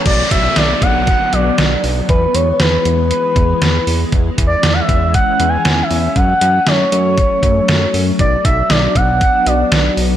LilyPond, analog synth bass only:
\new Staff \with { instrumentName = "Analog synth bass" } { \clef bass \time 4/4 \key b \dorian \tempo 4 = 118 b,,8 b,,8 b,,8 b,,8. r16 b,,8 b,,8 b,,8 | e,8 e,8 e,8 e,8. r16 e,8 e,8 e,8 | e,8 e,8 e,8 e,8. r16 e,8 e,8 e,8 | fis,8 fis,8 fis,8 fis,8. r16 fis,8 fis,8 fis,8 |
b,,8 b,,8 b,,8 b,,8. r16 b,,8 b,,8 b,,8 | }